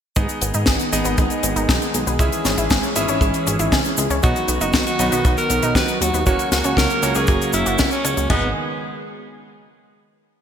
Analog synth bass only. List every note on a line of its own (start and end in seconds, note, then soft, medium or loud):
0.17 0.27 G#1 loud
0.42 0.52 G#1 medium
0.55 0.65 G#2 medium
0.67 0.78 G#1 loud
0.93 1.03 G#1 medium
1.05 1.16 G#1 medium
1.18 1.28 G#1 medium
1.44 1.54 G#1 medium
1.56 1.67 G#1 medium
1.69 1.79 B1 loud
1.94 2.05 B1 medium
2.07 2.17 B1 medium
2.19 2.30 C#2 loud
2.45 2.56 G#1 medium
2.58 2.68 G#1 medium
2.71 2.81 G#1 loud
2.96 3.06 G#1 medium
3.09 3.19 G#1 medium
3.21 3.32 G#1 loud
3.47 3.57 G#1 medium
3.60 3.70 G#1 medium
3.72 3.83 C#2 medium
3.98 4.08 C#2 medium
4.10 4.21 C#2 medium
4.24 4.34 B1 loud
4.49 4.59 B1 medium
4.61 4.72 F#1 medium
4.74 4.84 B1 loud
4.99 5.10 B1 loud
5.12 5.22 B1 medium
5.25 5.35 B1 loud
5.50 5.61 B1 medium
5.63 5.73 B1 medium
5.75 5.86 D#2 loud
6.01 6.11 D#2 medium
6.14 6.24 D#2 medium
6.27 6.37 F#1 loud
6.52 6.62 C#2 medium
6.65 6.75 C#2 medium
6.77 6.88 C#2 loud
7.03 7.13 C#2 medium
7.15 7.26 C#2 medium
7.28 7.38 F#1 loud
7.54 7.64 F#1 medium
7.66 7.77 F#1 medium
7.80 7.90 C#2 loud
8.05 8.15 C#2 medium
8.17 8.28 C#2 medium
8.30 8.54 G#1 loud